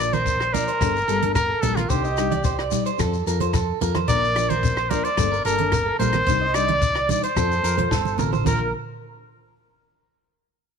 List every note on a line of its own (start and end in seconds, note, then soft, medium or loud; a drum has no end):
0.00 0.59 A#1 medium
0.00 0.15 F3 medium
0.00 0.16 A#3 medium
0.00 0.16 D4 medium
0.00 0.16 A#4 medium
0.00 0.12 D5 medium
0.00 0.15 D5 loud
0.00 shekere medium
0.13 0.39 A#4 medium
0.13 0.55 C5 medium
0.13 closed hi-hat soft
0.13 high conga medium
0.13 shekere soft
0.26 kick medium
0.26 closed hi-hat soft
0.26 shekere medium
0.40 0.53 C5 medium
0.40 cross-stick medium
0.53 0.70 F3 medium
0.53 0.70 A#3 medium
0.53 0.71 D4 medium
0.53 1.34 A#4 medium
0.53 0.71 A#4 medium
0.53 0.67 D5 medium
0.53 closed hi-hat soft
0.53 high conga medium
0.53 low conga medium
0.53 shekere medium
0.68 0.93 C5 medium
0.68 closed hi-hat soft
0.68 shekere soft
0.81 1.03 G1 loud
0.81 0.98 G3 medium
0.81 0.98 D4 medium
0.81 0.98 A4 medium
0.81 muted nylon-string guitar stroke medium
0.81 kick medium
0.81 cross-stick medium
0.81 closed hi-hat soft
0.81 shekere medium
0.96 shekere soft
1.08 1.52 G1 medium
1.08 1.22 G3 medium
1.08 1.23 A#3 medium
1.08 1.23 D4 medium
1.08 1.34 A4 medium
1.08 1.23 A4 medium
1.08 closed hi-hat soft
1.08 shekere medium
1.22 1.40 A#3 soft
1.22 1.40 D4 soft
1.22 closed hi-hat medium
1.22 high conga medium
1.22 shekere soft
1.35 1.63 A#4 loud
1.35 1.49 A#4 medium
1.35 kick loud
1.35 cross-stick medium
1.35 closed hi-hat medium
1.35 shekere medium
1.50 1.62 A4 medium
1.61 1.85 A#1 loud
1.61 1.80 G3 medium
1.61 1.80 A#3 medium
1.61 1.81 D4 medium
1.61 1.77 A4 medium
1.61 1.80 A4 medium
1.61 1.89 A#4 medium
1.61 closed hi-hat medium
1.61 low conga medium
1.61 shekere medium
1.76 1.90 F4 medium
1.76 cross-stick medium
1.76 closed hi-hat soft
1.76 high conga medium
1.89 2.78 C2 medium
1.89 2.07 D4 medium
1.89 2.07 D#4 medium
1.89 2.71 G4 medium
1.89 2.03 C5 medium
1.89 muted nylon-string guitar stroke medium
1.89 kick medium
1.89 closed hi-hat soft
1.89 shekere medium
2.04 2.30 D#5 medium
2.04 shekere soft
2.17 2.34 G3 medium
2.17 2.35 D4 medium
2.17 2.35 D#4 medium
2.17 cross-stick medium
2.17 closed hi-hat medium
2.17 shekere medium
2.31 2.44 D5 medium
2.31 closed hi-hat soft
2.31 high conga medium
2.31 shekere soft
2.44 2.58 C5 medium
2.44 kick medium
2.44 closed hi-hat medium
2.44 shekere medium
2.59 2.85 D5 medium
2.59 cross-stick medium
2.71 2.89 G3 medium
2.71 2.89 D#4 medium
2.71 closed hi-hat medium
2.71 low conga medium
2.71 shekere medium
2.85 2.99 C5 medium
2.85 closed hi-hat medium
2.85 shekere soft
2.98 3.21 F2 medium
2.98 3.15 C4 medium
2.98 3.16 F4 medium
2.98 3.16 A4 medium
2.98 3.26 A4 medium
2.98 kick medium
2.98 cross-stick medium
2.98 closed hi-hat medium
2.98 shekere medium
3.14 shekere soft
3.26 3.71 F2 medium
3.26 3.40 C4 medium
3.26 3.41 F4 medium
3.26 3.39 A4 medium
3.26 3.40 A#4 medium
3.26 closed hi-hat medium
3.26 shekere medium
3.40 3.58 F4 medium
3.40 3.57 A4 medium
3.40 3.54 C5 medium
3.40 closed hi-hat medium
3.40 high conga medium
3.40 shekere soft
3.53 3.80 A4 medium
3.53 kick medium
3.53 cross-stick medium
3.53 closed hi-hat medium
3.53 shekere medium
3.81 4.03 F2 medium
3.81 3.98 C4 medium
3.81 3.99 F4 medium
3.81 3.99 A4 medium
3.81 3.95 A#4 medium
3.81 closed hi-hat medium
3.81 low conga medium
3.81 shekere medium
3.95 4.08 C5 medium
3.95 cross-stick medium
3.95 closed hi-hat soft
3.95 high conga medium
4.08 4.96 A#1 medium
4.08 4.26 F3 medium
4.08 4.26 A#3 medium
4.08 4.26 D4 medium
4.08 4.35 A#4 loud
4.08 4.26 A#4 medium
4.08 4.51 D5 loud
4.08 kick medium
4.08 closed hi-hat medium
4.08 shekere medium
4.24 shekere soft
4.36 4.53 F3 medium
4.36 4.53 A#3 medium
4.36 4.53 D4 medium
4.36 4.54 A#4 medium
4.36 4.49 D5 medium
4.36 cross-stick medium
4.36 closed hi-hat medium
4.36 shekere medium
4.49 4.76 A#4 medium
4.49 4.91 C5 medium
4.49 closed hi-hat medium
4.49 high conga medium
4.49 shekere soft
4.63 kick medium
4.63 closed hi-hat soft
4.63 shekere loud
4.77 4.90 C5 medium
4.77 cross-stick medium
4.90 5.07 F3 medium
4.90 5.08 A#3 medium
4.90 5.08 D4 medium
4.90 5.06 A#4 medium
4.90 5.09 A#4 medium
4.90 5.04 D5 medium
4.90 closed hi-hat medium
4.90 high conga medium
4.90 low conga medium
4.90 shekere medium
5.04 5.31 C5 medium
5.04 5.45 D5 loud
5.04 closed hi-hat soft
5.04 shekere soft
5.17 5.40 G1 medium
5.17 5.35 G3 medium
5.17 5.35 A#3 medium
5.17 5.35 D4 medium
5.17 5.35 A4 medium
5.17 kick medium
5.17 cross-stick medium
5.17 closed hi-hat medium
5.17 shekere medium
5.32 5.45 A#4 medium
5.32 shekere soft
5.45 5.89 G1 medium
5.45 5.59 G3 medium
5.45 5.60 A#3 medium
5.45 5.59 D4 medium
5.45 5.71 A4 medium
5.45 5.58 A4 medium
5.45 5.96 A#4 medium
5.45 closed hi-hat medium
5.45 shekere medium
5.58 5.77 A#3 soft
5.58 5.76 D4 soft
5.58 5.76 A4 medium
5.58 closed hi-hat medium
5.58 high conga medium
5.58 shekere soft
5.72 5.86 A#4 medium
5.72 kick loud
5.72 cross-stick medium
5.72 closed hi-hat soft
5.72 shekere medium
5.86 5.99 A4 medium
5.99 6.22 A#1 loud
5.99 6.16 G3 medium
5.99 6.17 A#3 medium
5.99 6.17 D4 medium
5.99 6.17 A4 medium
5.99 6.26 A#4 medium
5.99 6.56 C5 loud
5.99 closed hi-hat soft
5.99 low conga medium
5.99 shekere medium
6.13 cross-stick medium
6.13 closed hi-hat soft
6.13 high conga medium
6.26 7.15 C2 loud
6.26 6.44 G3 medium
6.26 6.45 D4 medium
6.26 6.45 D#4 medium
6.26 6.41 C5 loud
6.26 kick medium
6.26 closed hi-hat soft
6.26 shekere medium
6.41 6.67 D#5 medium
6.54 6.71 G3 medium
6.54 6.72 D4 medium
6.54 6.72 D#4 medium
6.54 7.09 D5 loud
6.54 cross-stick medium
6.54 closed hi-hat medium
6.54 shekere medium
6.68 6.82 D5 medium
6.68 closed hi-hat soft
6.68 high conga medium
6.82 kick medium
6.82 closed hi-hat soft
6.82 shekere medium
6.95 7.22 D5 medium
6.95 cross-stick medium
7.08 7.25 G3 medium
7.08 7.26 D4 medium
7.08 7.27 D#4 medium
7.08 7.23 D5 medium
7.08 closed hi-hat soft
7.08 high conga medium
7.08 low conga medium
7.08 shekere medium
7.23 7.36 C5 medium
7.23 8.15 C5 medium
7.23 closed hi-hat medium
7.23 shekere soft
7.36 7.59 F2 medium
7.36 7.53 C4 medium
7.36 7.54 F4 medium
7.36 7.63 A4 medium
7.36 7.54 A4 medium
7.36 kick medium
7.36 cross-stick medium
7.36 closed hi-hat medium
7.36 shekere medium
7.52 shekere soft
7.62 7.86 F2 medium
7.62 7.77 C4 medium
7.62 7.77 F4 medium
7.62 7.76 A4 medium
7.62 7.77 A#4 medium
7.62 closed hi-hat medium
7.62 shekere medium
7.77 7.95 F4 medium
7.77 7.94 A4 medium
7.77 7.91 C5 medium
7.77 closed hi-hat medium
7.77 high conga medium
7.77 low conga medium
7.91 8.16 G1 medium
7.91 8.17 A4 medium
7.91 kick medium
7.91 snare medium
7.91 shekere medium
8.05 high conga medium
8.05 shekere soft
8.18 8.43 A1 medium
8.18 8.35 C4 medium
8.18 8.35 F4 medium
8.18 8.36 A4 medium
8.18 8.32 A#4 medium
8.18 mid tom medium
8.18 low conga medium
8.18 shekere medium
8.33 8.46 C5 medium
8.33 floor tom medium
8.33 high conga medium
8.33 shekere soft
8.44 8.72 A#1 medium
8.44 8.67 D4 medium
8.44 8.68 F4 medium
8.44 8.72 A#4 medium
8.44 8.69 A#4 medium
8.44 8.72 A#4 medium
8.44 kick medium
8.44 crash medium
8.44 high conga medium
8.44 shekere medium